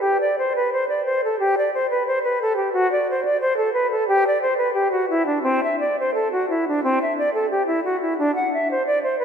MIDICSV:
0, 0, Header, 1, 2, 480
1, 0, Start_track
1, 0, Tempo, 694444
1, 954, Tempo, 674157
1, 1919, Time_signature, 4, 2, 24, 8
1, 3354, Tempo, 696864
1, 4314, Tempo, 673401
1, 6525, End_track
2, 0, Start_track
2, 0, Title_t, "Flute"
2, 0, Program_c, 0, 73
2, 5, Note_on_c, 0, 67, 86
2, 122, Note_off_c, 0, 67, 0
2, 143, Note_on_c, 0, 74, 71
2, 250, Note_off_c, 0, 74, 0
2, 266, Note_on_c, 0, 72, 64
2, 370, Note_off_c, 0, 72, 0
2, 384, Note_on_c, 0, 71, 67
2, 488, Note_off_c, 0, 71, 0
2, 502, Note_on_c, 0, 72, 74
2, 606, Note_off_c, 0, 72, 0
2, 613, Note_on_c, 0, 74, 73
2, 722, Note_off_c, 0, 74, 0
2, 729, Note_on_c, 0, 72, 72
2, 839, Note_off_c, 0, 72, 0
2, 859, Note_on_c, 0, 69, 67
2, 960, Note_off_c, 0, 69, 0
2, 964, Note_on_c, 0, 67, 82
2, 1079, Note_off_c, 0, 67, 0
2, 1094, Note_on_c, 0, 74, 69
2, 1204, Note_off_c, 0, 74, 0
2, 1211, Note_on_c, 0, 72, 69
2, 1322, Note_off_c, 0, 72, 0
2, 1326, Note_on_c, 0, 71, 69
2, 1439, Note_off_c, 0, 71, 0
2, 1447, Note_on_c, 0, 72, 76
2, 1555, Note_off_c, 0, 72, 0
2, 1560, Note_on_c, 0, 71, 69
2, 1676, Note_off_c, 0, 71, 0
2, 1693, Note_on_c, 0, 69, 74
2, 1794, Note_off_c, 0, 69, 0
2, 1798, Note_on_c, 0, 67, 68
2, 1911, Note_off_c, 0, 67, 0
2, 1915, Note_on_c, 0, 66, 92
2, 2036, Note_off_c, 0, 66, 0
2, 2049, Note_on_c, 0, 74, 72
2, 2163, Note_off_c, 0, 74, 0
2, 2181, Note_on_c, 0, 72, 64
2, 2279, Note_off_c, 0, 72, 0
2, 2284, Note_on_c, 0, 74, 72
2, 2394, Note_off_c, 0, 74, 0
2, 2399, Note_on_c, 0, 72, 76
2, 2509, Note_off_c, 0, 72, 0
2, 2513, Note_on_c, 0, 69, 68
2, 2625, Note_off_c, 0, 69, 0
2, 2629, Note_on_c, 0, 71, 74
2, 2749, Note_off_c, 0, 71, 0
2, 2755, Note_on_c, 0, 69, 70
2, 2872, Note_off_c, 0, 69, 0
2, 2878, Note_on_c, 0, 67, 98
2, 2993, Note_off_c, 0, 67, 0
2, 3012, Note_on_c, 0, 74, 72
2, 3114, Note_off_c, 0, 74, 0
2, 3118, Note_on_c, 0, 72, 70
2, 3224, Note_off_c, 0, 72, 0
2, 3228, Note_on_c, 0, 71, 65
2, 3341, Note_off_c, 0, 71, 0
2, 3345, Note_on_c, 0, 67, 79
2, 3463, Note_off_c, 0, 67, 0
2, 3469, Note_on_c, 0, 66, 65
2, 3585, Note_off_c, 0, 66, 0
2, 3594, Note_on_c, 0, 64, 74
2, 3702, Note_off_c, 0, 64, 0
2, 3707, Note_on_c, 0, 62, 69
2, 3815, Note_off_c, 0, 62, 0
2, 3819, Note_on_c, 0, 60, 94
2, 3946, Note_off_c, 0, 60, 0
2, 3963, Note_on_c, 0, 76, 70
2, 4070, Note_off_c, 0, 76, 0
2, 4074, Note_on_c, 0, 74, 74
2, 4192, Note_off_c, 0, 74, 0
2, 4212, Note_on_c, 0, 72, 70
2, 4310, Note_off_c, 0, 72, 0
2, 4314, Note_on_c, 0, 69, 72
2, 4433, Note_off_c, 0, 69, 0
2, 4440, Note_on_c, 0, 66, 69
2, 4555, Note_off_c, 0, 66, 0
2, 4566, Note_on_c, 0, 64, 67
2, 4678, Note_off_c, 0, 64, 0
2, 4693, Note_on_c, 0, 62, 69
2, 4801, Note_off_c, 0, 62, 0
2, 4805, Note_on_c, 0, 60, 95
2, 4917, Note_off_c, 0, 60, 0
2, 4938, Note_on_c, 0, 76, 71
2, 5043, Note_off_c, 0, 76, 0
2, 5053, Note_on_c, 0, 74, 73
2, 5160, Note_off_c, 0, 74, 0
2, 5166, Note_on_c, 0, 69, 61
2, 5276, Note_off_c, 0, 69, 0
2, 5284, Note_on_c, 0, 67, 72
2, 5395, Note_off_c, 0, 67, 0
2, 5400, Note_on_c, 0, 64, 61
2, 5512, Note_off_c, 0, 64, 0
2, 5526, Note_on_c, 0, 66, 69
2, 5636, Note_off_c, 0, 66, 0
2, 5644, Note_on_c, 0, 64, 65
2, 5755, Note_off_c, 0, 64, 0
2, 5767, Note_on_c, 0, 62, 88
2, 5877, Note_off_c, 0, 62, 0
2, 5890, Note_on_c, 0, 78, 67
2, 5998, Note_off_c, 0, 78, 0
2, 6019, Note_on_c, 0, 76, 62
2, 6123, Note_off_c, 0, 76, 0
2, 6143, Note_on_c, 0, 72, 65
2, 6245, Note_off_c, 0, 72, 0
2, 6254, Note_on_c, 0, 74, 76
2, 6361, Note_off_c, 0, 74, 0
2, 6372, Note_on_c, 0, 72, 60
2, 6480, Note_off_c, 0, 72, 0
2, 6486, Note_on_c, 0, 71, 68
2, 6525, Note_off_c, 0, 71, 0
2, 6525, End_track
0, 0, End_of_file